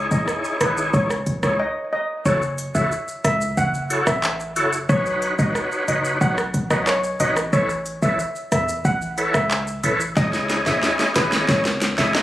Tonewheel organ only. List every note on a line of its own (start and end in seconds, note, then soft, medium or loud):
0.11 0.57 D#4 medium
0.11 0.57 E4 medium
0.11 0.57 G#4 medium
0.11 0.57 C#5 medium
0.60 0.91 D#4 medium
0.60 0.91 E4 medium
0.60 0.91 G#4 medium
0.60 0.91 C#5 medium
0.93 1.10 D#4 medium
0.93 1.10 E4 medium
0.93 1.10 G#4 medium
0.93 1.10 C#5 loud
1.43 1.59 D#4 medium
1.43 1.59 E4 medium
1.43 1.60 G#4 medium
1.43 1.60 C#5 medium
2.25 2.42 E4 loud
2.25 2.42 F#4 medium
2.25 2.42 A4 medium
2.25 2.42 C#5 loud
2.75 2.91 E4 medium
2.75 2.91 F#4 medium
2.75 2.91 A4 medium
2.75 2.92 C#5 medium
3.90 4.07 E4 medium
3.90 4.07 F#4 medium
3.90 4.07 A4 medium
3.90 4.07 C#5 medium
4.56 4.73 E4 medium
4.56 4.73 F#4 medium
4.56 4.73 A4 medium
4.56 4.73 C#5 medium
4.89 5.35 D#4 loud
4.89 5.35 F#4 medium
4.89 5.35 B4 medium
4.89 5.35 C#5 loud
5.38 5.84 D#4 medium
5.38 5.84 F#4 medium
5.38 5.84 B4 medium
5.38 5.84 C#5 medium
5.88 6.18 D#4 medium
5.88 6.18 F#4 medium
5.88 6.19 B4 medium
5.88 6.19 C#5 medium
6.21 6.37 D#4 medium
6.21 6.37 F#4 medium
6.21 6.38 B4 medium
6.21 6.38 C#5 loud
6.70 6.87 D#4 medium
6.70 6.87 F#4 medium
6.70 6.87 B4 medium
6.70 6.87 C#5 medium
7.20 7.36 D#4 medium
7.20 7.36 F#4 medium
7.20 7.37 B4 medium
7.20 7.37 C#5 medium
7.53 7.69 E4 loud
7.53 7.69 A4 medium
7.53 7.69 B4 medium
7.53 7.70 C#5 loud
8.02 8.19 E4 medium
8.02 8.19 A4 medium
8.02 8.19 B4 medium
8.02 8.19 C#5 medium
9.18 9.34 E4 medium
9.18 9.34 A4 medium
9.18 9.34 B4 medium
9.18 9.34 C#5 medium
9.83 10.00 E4 medium
9.83 10.00 A4 medium
9.83 10.00 B4 medium
9.83 10.00 C#5 medium
10.16 10.62 E4 loud
10.16 10.62 G#4 medium
10.16 10.62 C#5 medium
10.16 10.62 D#5 loud
10.66 11.12 E4 medium
10.66 11.12 G#4 medium
10.66 11.12 C#5 medium
10.66 11.12 D#5 medium
11.15 11.46 E4 medium
11.15 11.46 G#4 medium
11.15 11.46 C#5 medium
11.15 11.46 D#5 medium
11.48 11.65 E4 medium
11.48 11.65 G#4 medium
11.48 11.65 C#5 medium
11.48 11.65 D#5 loud
11.98 12.14 E4 medium
11.98 12.14 G#4 medium
11.98 12.14 C#5 medium
11.98 12.15 D#5 medium